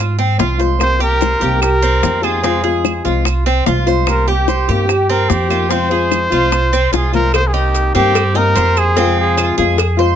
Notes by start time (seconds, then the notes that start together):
Already playing: G#2 F4
0.19 C4, high bongo
0.38 C2 F3 G#3 C4 F4, high bongo, low bongo, maracas
0.58 F3 G#3 C4 F4 C5, high bongo, maracas
0.78 C3 D#3 A#3 C4 G4 C5, high bongo, claves, maracas
0.99 A#3 C4 G4 A#4
1.21 C5, high bongo, maracas
1.40 C2 D#3 A#3 C4 G4, maracas
1.60 A#4, muted nylon-string guitar stroke, high bongo, claves, maracas
1.82 C4, maracas
2.02 F2 D#3 A#3 C4 G4, high bongo, low bongo, maracas
2.22 D#3 A#3 C4 F4 G4 G#4, claves, maracas
2.42 C3 F3 G#3 C4 F4, high bongo, maracas
2.63 G#3 C4 F4 G#4, high bongo
2.85 high bongo, claves, maracas
3.05 C2 F3 G#3 C4 F4, maracas
3.25 muted nylon-string guitar stroke, high bongo, claves, maracas
3.46 C4, high bongo
3.66 C2 F3 G#3 C4 F4, high bongo, low bongo, maracas
3.86 F3 G#3 C4 F4 C5, high bongo, maracas
4.06 C3 D#3 A#3 C4 G4 A#4, high bongo, claves, maracas
4.27 A#3 C4 G4
4.48 C5, high bongo, maracas
4.68 G2 D#3 A#3 C4 G4, maracas
4.87 G4, muted nylon-string guitar stroke, high bongo, claves, maracas
5.09 C4 A#4
5.28 F2 D#3 A#3 C4 G4, high bongo, low bongo, maracas
5.48 D#3 A#3 C4 F4 G4, claves, maracas
5.69 C3 F3 G#3 C4 F4 C5, high bongo, maracas
5.89 G#3 C4 F4 G#4, high bongo
6.12 high bongo, claves, maracas
6.30 C2 F3 G#3 C4 F4, maracas
6.51 muted nylon-string guitar stroke, high bongo, claves, maracas
6.73 C4, high bongo, maracas
6.91 C2 F3 G#3 C4 F4 G#4, high bongo, maracas
7.12 F3 G#3 C4 F4 A#4 C5, low bongo, maracas
7.33 C3 D#3 A#3 C4 G4 C5, cowbell, claves, maracas
7.47 G#4
7.54 D#4 G4
7.74 cowbell, maracas
7.94 G2 D#3 A#3 C4 G4, cowbell, maracas
8.15 muted nylon-string guitar stroke, cowbell, claves, maracas
8.34 D#3 A#3 C4 D#4 G4 A#4
8.55 F2 D#3 A#3 C4 G4 C5, cowbell, maracas
8.77 G#4, cowbell, claves, maracas
8.96 C3 F3 G#3 C4 F4, cowbell, maracas
9.20 G#4
9.37 F4, cowbell, claves, maracas
9.58 F2 F3 G#3 C4 F4 G#4, maracas
9.77 muted nylon-string guitar stroke, cowbell, claves, maracas
9.97 F3 G#3 C4 F4 C5